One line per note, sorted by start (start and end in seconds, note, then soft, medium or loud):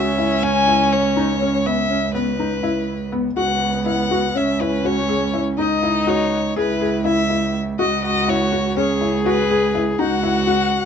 0.00 3.33 C#2 medium
0.00 3.09 C#4 loud
0.00 0.45 E5 medium
0.18 0.33 E4 medium
0.42 0.57 C#4 medium
0.42 0.94 G#5 loud
0.68 0.96 E4 medium
0.93 1.67 C#5 medium
1.17 1.31 D#4 medium
1.41 1.56 C#4 medium
1.66 1.80 B3 medium
1.66 2.14 E5 loud
1.90 2.05 C#4 medium
2.14 2.29 B3 medium
2.14 3.09 B4 medium
2.39 2.54 D#4 medium
2.63 2.92 E4 medium
3.12 3.27 B3 medium
3.37 4.35 C#2 medium
3.37 4.37 B3 medium
3.37 3.66 F#4 medium
3.37 3.83 F#5 medium
3.86 4.00 E4 medium
3.86 4.38 F#5 medium
4.11 4.25 F#4 medium
4.35 5.59 C#2 medium
4.35 4.50 C#4 medium
4.35 5.60 C#4 medium
4.35 4.63 E5 medium
4.60 4.74 E4 medium
4.60 4.87 B4 medium
4.85 4.99 F#4 medium
4.85 5.40 C#5 medium
5.09 5.23 G#4 medium
5.33 5.48 E4 medium
5.58 6.56 C#2 medium
5.58 5.73 D#4 medium
5.58 6.56 D#4 loud
5.58 6.11 D#5 medium
5.83 5.97 E4 medium
6.07 6.36 F#4 medium
6.07 6.57 C#5 medium
6.56 7.79 C#2 medium
6.56 7.49 E4 loud
6.56 6.71 G#4 medium
6.56 7.03 B4 medium
6.81 6.95 G#4 medium
7.05 7.19 E4 medium
7.05 7.57 E5 medium
7.30 7.59 E4 medium
7.79 8.77 C#2 medium
7.79 8.79 F#4 loud
7.79 8.08 F#4 medium
7.79 8.02 D#5 medium
8.04 8.31 D#5 medium
8.28 8.42 E4 medium
8.28 8.77 C#5 medium
8.52 8.67 F#4 medium
8.77 9.99 C#2 medium
8.77 8.91 C#4 medium
8.77 10.02 G#4 loud
8.77 9.23 C#5 medium
9.01 9.15 E4 medium
9.26 9.40 F#4 medium
9.26 9.78 B4 medium
9.50 9.65 G#4 medium
9.75 9.89 E4 medium
9.99 10.85 C#2 medium
9.99 10.13 D#4 medium
9.99 10.85 F#4 loud
9.99 10.85 F#5 medium
10.23 10.38 E4 medium
10.47 10.76 F#4 medium